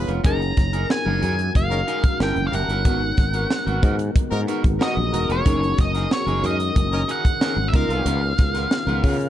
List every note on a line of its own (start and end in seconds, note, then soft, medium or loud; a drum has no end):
0.00 2.16 D#3 medium
0.00 0.22 B3 medium
0.00 2.16 C#4 medium
0.00 0.13 F4 medium
0.00 0.22 F4 medium
0.00 0.13 G#4 medium
0.00 0.13 B4 loud
0.08 0.22 F1 medium
0.08 0.21 B3 soft
0.08 0.21 F4 soft
0.08 0.20 A#4 soft
0.08 closed hi-hat medium
0.24 0.51 F#1 loud
0.24 2.18 G#3 medium
0.24 2.16 C#4 medium
0.24 0.40 D#4 medium
0.24 2.16 D#4 medium
0.24 2.18 F#4 medium
0.24 0.40 G#4 medium
0.24 2.17 G#4 medium
0.24 7.69 A#4 medium
0.24 0.39 A#4 medium
0.24 2.17 A#4 medium
0.24 0.87 A#5 loud
0.24 kick loud
0.24 closed hi-hat loud
0.24 muted conga soft
0.24 low conga medium
0.40 muted clean electric guitar stroke soft
0.40 closed hi-hat soft
0.40 muted conga soft
0.57 0.84 F#1 loud
0.57 muted clean electric guitar stroke soft
0.57 kick loud
0.57 snare soft
0.57 closed hi-hat medium
0.73 0.86 D#4 soft
0.73 0.86 G#4 medium
0.73 0.85 A#4 medium
0.73 closed hi-hat medium
0.89 1.52 G#5 loud
0.89 muted clean electric guitar stroke soft
0.89 snare loud
0.89 muted conga soft
1.06 1.20 F#1 loud
1.06 1.20 D#4 medium
1.06 1.21 G#4 medium
1.06 1.21 A#4 medium
1.06 muted conga soft
1.06 high conga medium
1.22 1.49 F#2 medium
1.22 1.34 D#4 medium
1.22 1.35 G#4 medium
1.22 1.35 A#4 medium
1.22 closed hi-hat medium
1.22 low conga medium
1.39 closed hi-hat soft
1.55 1.82 F#1 medium
1.55 2.17 F5 medium
1.55 kick medium
1.55 closed hi-hat medium
1.55 high conga medium
1.70 1.81 C#4 medium
1.70 1.81 D#4 loud
1.70 1.81 A#4 loud
1.70 muted clean electric guitar stroke soft
1.70 closed hi-hat soft
1.87 2.03 D#4 medium
1.87 2.03 G#4 medium
1.87 2.03 A#4 medium
1.87 closed hi-hat medium
2.04 muted clean electric guitar stroke soft
2.04 kick medium
2.04 closed hi-hat medium
2.04 high conga soft
2.19 2.33 G1 loud
2.19 2.85 C#4 medium
2.19 2.36 C#4 medium
2.19 2.33 E4 medium
2.19 2.85 E4 medium
2.19 2.36 E4 medium
2.19 2.33 G4 medium
2.19 2.33 A#4 medium
2.19 2.86 A#4 medium
2.19 2.36 A#4 loud
2.19 2.45 G5 loud
2.19 2.85 A5 medium
2.19 snare loud
2.36 2.49 F#1 medium
2.36 muted clean electric guitar stroke medium
2.36 closed hi-hat soft
2.36 muted conga soft
2.36 high conga medium
2.47 2.72 E4 medium
2.47 2.72 G4 loud
2.47 2.72 A#4 loud
2.47 2.53 F5 medium
2.52 2.66 F#1 medium
2.52 4.89 F#5 medium
2.52 muted clean electric guitar stroke soft
2.52 closed hi-hat medium
2.52 low conga medium
2.68 2.85 G1 medium
2.68 2.82 C#4 soft
2.68 2.82 E4 soft
2.68 2.81 A#4 medium
2.68 closed hi-hat soft
2.85 3.12 G#1 loud
2.85 5.43 D#3 medium
2.85 5.43 G#3 medium
2.85 4.44 B3 medium
2.85 3.01 B3 medium
2.85 5.43 B3 medium
2.85 4.45 D#4 medium
2.85 7.70 F#4 medium
2.85 4.45 F#4 medium
2.85 3.01 F#4 medium
2.85 3.01 A#4 medium
2.85 4.46 A#4 medium
2.85 kick loud
2.85 closed hi-hat loud
2.85 muted conga soft
2.85 low conga medium
3.02 muted clean electric guitar stroke soft
3.17 3.44 G#1 medium
3.17 muted clean electric guitar stroke soft
3.17 kick loud
3.17 snare soft
3.17 closed hi-hat medium
3.33 3.47 B3 soft
3.33 3.47 F#4 medium
3.33 3.46 A#4 medium
3.33 closed hi-hat medium
3.50 muted clean electric guitar stroke soft
3.50 snare loud
3.50 muted conga soft
3.66 3.80 G#1 medium
3.66 3.81 B3 medium
3.66 3.82 F#4 medium
3.66 3.82 A#4 medium
3.66 closed hi-hat soft
3.66 high conga medium
3.82 4.09 G#2 loud
3.82 3.95 B3 medium
3.82 3.95 F#4 medium
3.82 3.96 A#4 medium
3.82 kick loud
3.82 closed hi-hat medium
3.82 low conga medium
3.99 muted clean electric guitar stroke soft
3.99 closed hi-hat medium
4.15 muted fretless electric bass stroke soft
4.15 kick loud
4.15 closed hi-hat medium
4.15 muted conga soft
4.15 high conga medium
4.31 4.45 G#2 loud
4.31 4.41 D#4 loud
4.31 4.42 F#4 medium
4.31 4.42 A#4 loud
4.31 muted clean electric guitar stroke medium
4.31 closed hi-hat soft
4.31 muted conga soft
4.47 4.63 B3 medium
4.47 5.46 B3 medium
4.47 5.44 D#4 medium
4.47 4.63 F#4 medium
4.47 5.46 F#4 medium
4.47 5.45 G#4 medium
4.47 4.63 A#4 medium
4.47 closed hi-hat medium
4.64 4.78 G#1 medium
4.64 muted clean electric guitar stroke soft
4.64 kick medium
4.64 closed hi-hat medium
4.64 high conga medium
4.79 4.96 B3 medium
4.79 4.94 D#4 medium
4.79 4.94 F#4 medium
4.79 4.96 F#4 medium
4.79 4.94 A#4 medium
4.79 4.96 A#4 medium
4.79 5.27 D#5 medium
4.79 snare loud
4.97 5.10 A#1 loud
4.97 muted clean electric guitar stroke soft
4.97 muted conga soft
4.97 high conga medium
5.12 5.26 E1 medium
5.12 5.33 D#4 medium
5.12 5.34 F#4 medium
5.12 5.33 A#4 loud
5.12 muted clean electric guitar stroke medium
5.12 closed hi-hat medium
5.12 low conga medium
5.29 5.43 F1 medium
5.29 5.42 B3 medium
5.29 5.42 F#4 medium
5.29 5.41 A#4 medium
5.29 5.80 C#5 medium
5.29 closed hi-hat soft
5.45 5.72 F#1 loud
5.45 9.29 D#3 medium
5.45 7.71 G#3 medium
5.45 7.69 C#4 medium
5.45 9.29 C#4 medium
5.45 7.69 D#4 medium
5.45 5.61 D#4 medium
5.45 7.70 G#4 medium
5.45 5.61 G#4 medium
5.45 5.61 A#4 medium
5.45 7.70 A#4 medium
5.45 kick loud
5.45 closed hi-hat loud
5.45 muted conga soft
5.45 low conga medium
5.62 muted clean electric guitar stroke soft
5.62 closed hi-hat soft
5.62 muted conga soft
5.78 6.05 F#1 loud
5.78 6.13 D#5 medium
5.78 muted clean electric guitar stroke soft
5.78 kick loud
5.78 snare soft
5.78 closed hi-hat medium
5.94 6.07 D#4 soft
5.94 6.07 G#4 medium
5.94 6.06 A#4 medium
5.94 snare soft
5.94 closed hi-hat medium
6.11 6.45 C#5 medium
6.11 muted clean electric guitar stroke soft
6.11 snare loud
6.26 6.40 F#1 loud
6.26 6.42 D#4 medium
6.26 6.42 G#4 medium
6.26 6.42 A#4 medium
6.26 closed hi-hat soft
6.26 high conga medium
6.43 6.69 F#2 medium
6.43 6.55 D#4 medium
6.43 6.56 G#4 medium
6.43 6.56 A#4 medium
6.43 7.12 D#5 medium
6.43 closed hi-hat medium
6.43 low conga medium
6.59 muted clean electric guitar stroke soft
6.59 closed hi-hat medium
6.75 7.02 F#1 loud
6.75 muted clean electric guitar stroke soft
6.75 kick loud
6.75 closed hi-hat medium
6.75 high conga medium
6.92 7.02 C#4 loud
6.92 7.02 D#4 loud
6.92 7.02 A#4 loud
6.92 muted clean electric guitar stroke soft
6.92 closed hi-hat soft
6.92 muted conga soft
7.08 7.24 D#4 medium
7.08 7.24 G#4 medium
7.08 7.24 A#4 medium
7.08 7.69 F#5 medium
7.08 closed hi-hat medium
7.25 muted clean electric guitar stroke soft
7.25 kick medium
7.25 closed hi-hat medium
7.25 high conga medium
7.41 7.55 C#4 medium
7.41 7.56 D#4 medium
7.41 7.55 D#4 medium
7.41 7.57 G#4 medium
7.41 7.55 A#4 medium
7.41 7.56 A#4 medium
7.41 snare loud
7.56 7.70 G#1 medium
7.56 muted clean electric guitar stroke soft
7.56 muted conga soft
7.56 high conga medium
7.68 7.74 E5 medium
7.72 7.87 C#2 loud
7.72 9.29 B3 medium
7.72 8.14 D#4 medium
7.72 9.29 D#4 medium
7.72 8.15 F4 loud
7.72 9.29 F4 medium
7.72 8.15 A#4 loud
7.72 9.29 A#4 medium
7.72 9.29 F5 medium
7.72 muted clean electric guitar stroke soft
7.72 kick loud
7.72 closed hi-hat medium
7.72 low conga medium
7.89 8.02 C2 medium
7.89 8.02 B3 medium
7.89 8.02 F4 medium
7.89 8.02 A#4 medium
7.89 closed hi-hat medium
8.05 8.32 C#2 loud
8.05 8.21 B3 medium
8.05 8.22 F4 medium
8.05 8.21 A#4 medium
8.05 closed hi-hat loud
8.05 muted conga soft
8.05 low conga medium
8.22 muted clean electric guitar stroke soft
8.38 8.65 C#2 medium
8.38 muted clean electric guitar stroke soft
8.38 kick loud
8.38 snare soft
8.38 closed hi-hat medium
8.54 8.67 B3 soft
8.54 8.67 F4 medium
8.54 8.67 A#4 medium
8.54 snare soft
8.54 closed hi-hat medium
8.71 muted clean electric guitar stroke soft
8.71 snare loud
8.87 9.00 C#2 medium
8.87 9.02 B3 medium
8.87 9.03 F4 medium
8.87 9.03 A#4 medium
8.87 closed hi-hat soft
8.87 muted conga soft
8.87 high conga medium
9.03 9.29 C#3 loud
9.03 9.15 B3 medium
9.03 9.16 F4 medium
9.03 9.16 A#4 medium
9.03 kick medium
9.03 open hi-hat medium
9.03 low conga medium
9.20 muted clean electric guitar stroke soft
9.20 closed hi-hat medium